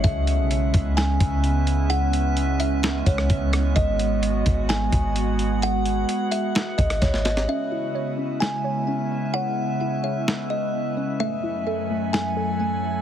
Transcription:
Already playing: E4
0.04 C#2 C#3 G#3 B3 C#4 B4 E5, kick, closed hi-hat
0.27 closed hi-hat
0.39 B1
0.51 closed hi-hat
0.74 C#2, kick, closed hi-hat
0.97 G#5, snare, closed hi-hat
1.20 C#2, kick, closed hi-hat
1.44 closed hi-hat
1.67 closed hi-hat
1.90 C#4 F#5, closed hi-hat
2.13 closed hi-hat
2.37 closed hi-hat
2.60 E5, closed hi-hat
2.83 snare, closed hi-hat
3.06 C#2 C#5, kick, closed hi-hat
3.18 cross-stick
3.30 C#2, kick, closed hi-hat
3.53 cross-stick, closed hi-hat
3.76 G#1 B3 F#4 G#4 D#5 F#5, kick, closed hi-hat
3.99 closed hi-hat
4.23 closed hi-hat
4.46 G#1, kick, closed hi-hat
4.69 G#5, snare, closed hi-hat
4.92 G#1, kick, closed hi-hat
5.16 closed hi-hat
5.39 closed hi-hat
5.62 F#4 F#5, closed hi-hat
5.86 closed hi-hat
6.09 closed hi-hat
6.31 E5, closed hi-hat
6.55 snare, closed hi-hat
6.78 G#1 D#5, kick, closed hi-hat
6.90 cross-stick, closed hi-hat
7.02 G#1 C#5, kick, snare, closed hi-hat
7.14 snare
7.25 D#5, snare, closed hi-hat
7.37 snare
7.48 C#3 G#3 B3 C#4 E4 B4 E5
7.72 E4
7.95 C#5
8.18 C#4
8.40 G#5, snare
8.64 C#5
8.88 C#4
9.34 C#5 F#5
9.81 E4
10.03 C#5 E5
10.28 snare
10.50 D#5
10.97 C#4
11.20 F#2 F#3 A3 E4 A4 E5 F#5 G#5
11.43 E4
11.67 A4
11.91 A3
12.13 G#5, snare
12.37 A4
12.60 A3

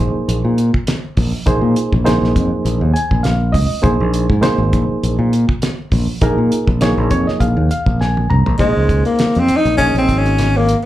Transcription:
Already playing: A#3 D#4 G#4 C5
0.00 A#1
0.15 muted fingered electric bass stroke
0.28 A#1, closed hi-hat
0.45 A#2
0.58 closed hi-hat
0.74 kick
0.87 snare, closed hi-hat
1.17 A#1, kick, open hi-hat
1.46 A#1 A#3 D#4 G#4 C5, kick, closed hi-hat
1.61 A#2
1.76 closed hi-hat
1.93 A#1, kick
2.04 A#3 D#4 G#4 C5, snare, closed hi-hat
2.22 A#1, snare
2.36 F2, kick, closed hi-hat
2.51 muted fingered electric bass stroke
2.65 A#1, closed hi-hat
2.81 D#2
2.94 G#5, muted fingered electric bass stroke, closed hi-hat
3.11 A#1, kick
3.23 F5, snare, closed hi-hat
3.52 C#2 D#5, kick, open hi-hat
3.82 A#1 A#3 D#4 G#4 C5, kick, closed hi-hat
4.00 A#1
4.14 closed hi-hat
4.29 G#2, kick
4.41 A#3 D#4 G#4 C5, muted fingered electric bass stroke, snare, closed hi-hat
4.58 G#1
4.73 A#1, kick, closed hi-hat
4.89 muted fingered electric bass stroke
5.03 A#1, closed hi-hat
5.19 A#2
5.33 closed hi-hat
5.49 kick
5.62 snare, closed hi-hat
5.92 A#1, kick, open hi-hat
6.21 A#1 A#3 D#4 G#4 A#4, kick, closed hi-hat
6.38 A#2
6.52 closed hi-hat
6.67 A#1, kick
6.81 A#3 D#4 G#4 C#5, snare, closed hi-hat
6.98 A#1
7.11 F2 C#5, kick, closed hi-hat
7.27 D#5, muted fingered electric bass stroke, snare
7.40 A#1 F5, kick, closed hi-hat
7.57 D#2
7.71 F5, closed hi-hat
7.86 A#1, kick
8.01 G#5, snare
8.17 high tom
8.30 C2 A#5, mid tom
8.46 A#1, floor tom
8.59 A#1 G#3 A#3 D#4 G#4 C5, kick, closed hi-hat
8.77 C#2
8.89 kick, closed hi-hat
9.05 A#3, closed hi-hat
9.19 snare, closed hi-hat
9.35 F2, closed hi-hat
9.40 C4
9.48 muted fingered electric bass stroke, closed hi-hat
9.57 D#4
9.65 A#1, closed hi-hat
9.77 A#3 C#4 D#4 G#4 D#5, kick, closed hi-hat
9.95 A#1 C4, closed hi-hat
10.09 G#1, kick, closed hi-hat
10.18 C#4
10.26 closed hi-hat
10.38 snare, closed hi-hat
10.57 A#3
10.69 closed hi-hat

